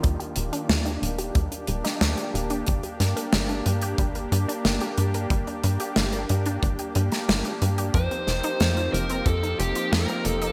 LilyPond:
<<
  \new Staff \with { instrumentName = "Lead electric guitar" } { \time 4/4 \key g \minor \tempo 4 = 91 r1 | r1 | r1 | c''4. bes'8 a'8 g'8 bes'8 a'8 | }
  \new Staff \with { instrumentName = "Supersaw synth" } { \time 4/4 \key g \minor << { <ees f'>1 | r1 | r1 | f1 | } \\ { <bes d' g'>1~ | <bes d' g'>1~ | <bes d' g'>1 | <bes c' ees'>1 | } >> }
  \new Staff \with { instrumentName = "Synth arpeggio sound" } { \time 4/4 \key g \minor g16 g'16 g16 d'16 g16 ees'16 g16 g'16 g16 d'16 g16 ees'16 g16 g'16 g16 d'16 | g16 g'16 g16 bes'16 g16 d'16 g16 g'16 g16 bes'16 g16 d'16 g16 g'16 g16 bes'16 | g16 d'16 g16 g'16 g16 bes'16 g16 d'16 g16 g'16 g16 bes'16 g16 d'16 g16 g'16 | f16 c'16 f16 ees'16 f16 f'16 f16 c'16 f16 ees'16 f16 f'16 f16 c'16 f16 ees'16 | }
  \new Staff \with { instrumentName = "Analog synth bass" } { \clef bass \time 4/4 \key g \minor ees,8 ees,,8 ees,8 ees,,8 ees,8 ees,,8 ees,8 ees,,8 | g,,8 g,8 g,,8 g,8 g,,8 g,8 g,,8 g,8 | g,,8 g,8 g,,8 g,8 g,,8 g,8 g,,8 g,8 | f,8 f,,8 f,8 f,,8 f,8 f,,8 f,8 f,,8 | }
  \new DrumStaff \with { instrumentName = "Drums" } \drummode { \time 4/4 <hh bd>16 hh16 hh16 hh16 <hh sn>16 hh16 hh16 hh16 <hh bd>16 hh16 hh16 <hh sn>16 <hh sn>16 hh16 hh16 hh16 | <hh bd>16 hh16 <hh sn>16 hh16 <hh sn>16 hh16 hh16 hh16 <hh bd>16 hh16 hh16 hh16 <hh sn>16 hh16 hh16 hh16 | <hh bd>16 hh16 hh16 hh16 <hh sn>16 hh16 hh16 hh16 <hh bd>16 hh16 hh16 <hh sn>16 <hh sn>16 hh16 hh16 hh16 | <hh bd>16 hh16 <hh sn>16 hh16 <hh sn>16 hh16 hh16 hh16 <hh bd>16 hh16 hh16 hh16 <hh sn>16 hh16 hh16 hh16 | }
>>